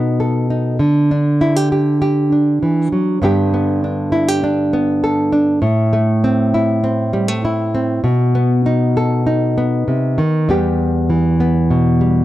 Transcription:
Already playing: B2 B3 D#4 A4
0.20 A4
0.50 D#4
0.79 D3
1.11 D4
1.41 E4
1.56 G4
1.72 G4
2.02 G4
2.32 D4
2.63 E3
2.92 F#3
3.22 G2 D3 B3 D4 G4
3.54 B3
3.84 D4
4.12 E4
4.28 G4
4.44 D4
4.73 B3
5.04 A4
5.33 D4
5.62 A2
5.93 A3
6.24 C4
6.54 E4
6.84 C4
7.13 G3
7.28 A3
7.45 E4
7.75 C4
8.04 B2
8.35 B3
8.66 D#4
8.97 A4
9.27 D#4
9.58 B3
9.88 C3
10.18 D#3
10.49 E2 G3 B3 G4
11.10 E3
11.40 B3
11.71 B2
12.01 G3

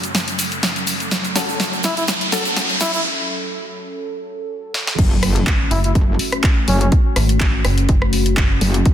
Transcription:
Already playing: F#3 C#4 A4, riser
0.04 closed hi-hat, shaker
0.15 snare, closed hi-hat, shaker
0.28 closed hi-hat, shaker
0.39 open hi-hat, shaker
0.51 closed hi-hat, shaker
0.63 snare, closed hi-hat, shaker
0.76 closed hi-hat, shaker
0.87 open hi-hat, shaker
1.00 closed hi-hat, shaker
1.11 snare, closed hi-hat, shaker
1.24 closed hi-hat, shaker
1.36 C#4 F#4 A4, snare, open hi-hat, shaker
1.49 shaker
1.60 snare, closed hi-hat, shaker
1.73 shaker
1.84 E4, snare, open hi-hat, shaker
1.97 E4, closed hi-hat, shaker
2.08 snare, closed hi-hat, shaker
2.21 closed hi-hat, shaker
2.32 C#4 F#4 A4, snare, open hi-hat, shaker
2.45 closed hi-hat, shaker
2.56 snare, closed hi-hat, shaker
2.70 closed hi-hat, shaker
2.80 E4, snare, open hi-hat, shaker
2.94 E4, closed hi-hat, shaker
4.74 snare
4.87 snare
4.99 F#1 A3 C#4 F#4, kick, closed hi-hat, crash, impact
5.23 cross-stick, open hi-hat
5.36 closed hi-hat
5.47 kick, clap, closed hi-hat
5.71 F#1 E4, open hi-hat
5.84 E4, closed hi-hat
5.95 F#1, kick, closed hi-hat
6.19 open hi-hat
6.32 cross-stick, closed hi-hat
6.44 kick, clap, closed hi-hat
6.68 F#1 C#4, open hi-hat
6.81 C#4, closed hi-hat
6.92 kick, closed hi-hat
7.16 G#1, cross-stick, open hi-hat
7.29 closed hi-hat
7.40 kick, clap, closed hi-hat
7.65 F#1, cross-stick, open hi-hat
7.78 closed hi-hat
7.89 F#1, kick, closed hi-hat
8.02 cross-stick
8.13 open hi-hat
8.26 closed hi-hat
8.37 F#1, kick, clap, closed hi-hat
8.61 F#1, open hi-hat
8.74 closed hi-hat
8.86 F#1, kick, closed hi-hat

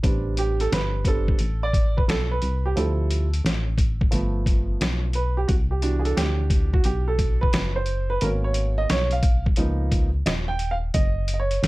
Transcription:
0.03 A1 G3 B3 C4 D4, kick, closed hi-hat
0.37 G4, closed hi-hat
0.60 A4, closed hi-hat
0.72 G1 B4, snare, closed hi-hat
1.05 G3 B3 C4 D4 A4, kick, closed hi-hat
1.28 kick
1.39 A1, closed hi-hat
1.63 D5
1.73 kick, closed hi-hat
1.97 B4, kick
2.08 B1 A4, snare, closed hi-hat
2.31 B4
2.42 C2, closed hi-hat
2.66 G4
2.76 D2 F3 G3 C4 E4 A4, closed hi-hat
3.11 closed hi-hat
3.34 closed hi-hat
3.45 A1, snare, closed hi-hat
3.78 kick, closed hi-hat
4.01 kick
4.11 G1 F3 A3 B3, closed hi-hat
4.46 kick, closed hi-hat
4.81 B1, snare, closed hi-hat
5.13 B4, closed hi-hat
5.37 G4
5.48 C2 F#4, kick, closed hi-hat
5.71 G4
5.82 B2 E3 D4 F#4, closed hi-hat
6.00 G#4
6.05 A4, closed hi-hat
6.17 D2 G4, snare, closed hi-hat
6.50 kick, closed hi-hat
6.74 F#4, kick
6.84 B1 G4, closed hi-hat
7.08 A4
7.19 kick, closed hi-hat
7.41 B4, kick
7.53 F#1, snare, closed hi-hat
7.76 C5
7.86 closed hi-hat
8.10 B4
8.21 G#1 F#3 A#3 B3 C#4 A#4, closed hi-hat
8.44 C#5
8.54 closed hi-hat
8.78 D#5
8.90 B1 C#5, snare, closed hi-hat
9.11 F5, closed hi-hat
9.23 kick, closed hi-hat
9.46 kick
9.56 C#2 F3 A#3 B3 D#4, closed hi-hat
9.92 kick, closed hi-hat
10.26 D#1 D#5, snare, closed hi-hat
10.48 G5
10.59 closed hi-hat
10.71 F5
10.94 F#1 D#5, kick, closed hi-hat
11.28 closed hi-hat
11.34 D#5
11.40 C#5
11.51 closed hi-hat
11.63 G#1, snare, closed hi-hat

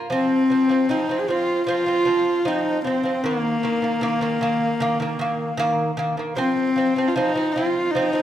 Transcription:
0.10 F3 C4
0.50 F3 C4
0.69 F3 C4
0.89 F3 C4 D#4
1.09 F3 C4
1.20 G#4
1.28 F3 C4 F4
1.66 F3 C4 F4
1.86 F3 C4
2.05 F3 C4
2.45 F3 C4 D#4
2.84 F3 C4
3.03 F3 C4
3.24 D#3 A#3
3.63 D#3 A#3
3.82 D#3 A#3
4.01 D#3 A#3
4.21 D#3 A#3
4.41 D#3 A#3
4.80 D#3 A#3
5.00 D#3 A#3
5.19 D#3 A#3
5.57 D#3 A#3
5.97 D#3 A#3
6.17 D#3 A#3
6.36 F3 C4
6.76 F3 C4
6.96 F3 C4
7.08 F4
7.15 F3 C4 D#4
7.35 F3 C4
7.52 F4
7.56 F3 C4
7.91 F3 D#4
7.96 C4
8.13 F3 C4

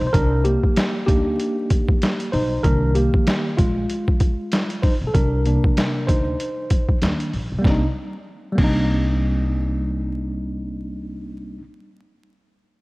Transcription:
0.01 B1
0.07 C5
0.13 C2 D4 A#4, kick, closed hi-hat
0.45 A#3 G4, closed hi-hat
0.64 kick
0.77 snare, closed hi-hat
1.06 D2 A#3 D4 D#4 G4, kick, closed hi-hat
1.40 closed hi-hat
1.70 kick, closed hi-hat
1.89 kick
2.02 snare, closed hi-hat
2.20 closed hi-hat
2.32 B1 D#4 C5, open hi-hat
2.63 C2 D#3 A#3 D4 A#4, kick, closed hi-hat
2.95 A#3 G4, closed hi-hat
3.14 kick
3.26 snare, closed hi-hat
3.57 A#1 G#3 F4, kick, closed hi-hat
3.89 closed hi-hat
4.08 kick
4.20 kick, closed hi-hat
4.52 snare, closed hi-hat
4.70 closed hi-hat
4.82 D#4 C5, kick, open hi-hat
5.01 B1
5.07 A4
5.14 C2 D4 A#4, kick, closed hi-hat
5.45 C3 A#3 D4, closed hi-hat
5.64 kick
5.77 snare, closed hi-hat
6.07 D2 D#4 C5, kick, closed hi-hat
6.40 closed hi-hat
6.70 kick, closed hi-hat
6.89 kick
7.02 D#2 D#3 A#3 D4, snare, closed hi-hat
7.20 closed hi-hat
7.33 A#1, open hi-hat
7.52 B1
7.59 G3 A#3
7.64 C2 C4 D4, kick, snare
7.70 D#4
8.52 G3 A#3
8.58 C2 C4 D4, kick, crash
8.64 D#4

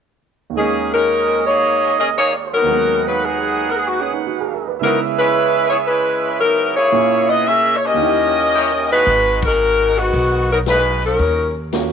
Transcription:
0.50 D#2 D#3
0.55 D#3 G#3 A#3 C#4 G#4 A#4 C#5 D#5
0.61 C#4
0.93 G#3 C#4 D#4 A#4
1.47 A#3 D#4 G#4 C#5
1.62 A#4 C#5
1.99 C#4 G#4 A#4 D#5
2.18 A#3 D#4 G#4 C#5
2.54 F#3 B3 D#4 A#4
2.62 D#2 D#3
2.66 F#3 G#3 D#4 G#4 A#4 B4 F#5
2.71 B3 A#4
3.07 F#3 A#3 D#4 B4
3.25 F#3 B3 D#4 G#4
3.70 A#4
3.77 G#4
3.88 F#4
4.00 C#4 G#4
4.13 D#4
4.27 F#4
4.41 G#4
4.54 A#4
4.67 B4
4.79 C#3 F#3 G#3 B3 E4 G#4 B4 C#5 D#5 E5
4.83 B3 D#4 A#4
5.18 G#3 C#4 E4 B4
5.69 B3 E4 G#4 C#5
5.87 G#3 C#4 E4 B4
6.40 F#3 B3 D#4 A#4
6.77 A#3 E4 G#4 C#5
6.92 A#2 A#3 C#4 E4 G#4 A#4 C#5 E5
7.29 B3 E4 G#4 D#5
7.47 C#4 G#4 A#4 E5
7.76 C#5
7.85 C#4 G4 A#4 D#5
7.94 D#2 D#3
7.99 C#4 E4 G4 C#5 D#5
8.05 G4
8.53 A#3 E4 G4 A#4 C#5 E5
8.71 C#5
8.80 G5
8.89 G#3 D#4 F#4 B4 D#5
9.07 G#1, kick, open hi-hat
9.42 G#3 D#4 F#4 A#4, kick, ride
9.96 D#3 G#3 B3 F#4, open hi-hat
10.13 B1, kick, open hi-hat
10.52 F#3 B3 D#4 A#4
10.66 G#3 D#4 F#4 B4, snare, closed hi-hat
11.02 F#3 C#4 D#4, open hi-hat
11.06 A#4
11.19 D#2, kick, open hi-hat
11.72 A#3 C#4 F4 F#4, snare, closed hi-hat

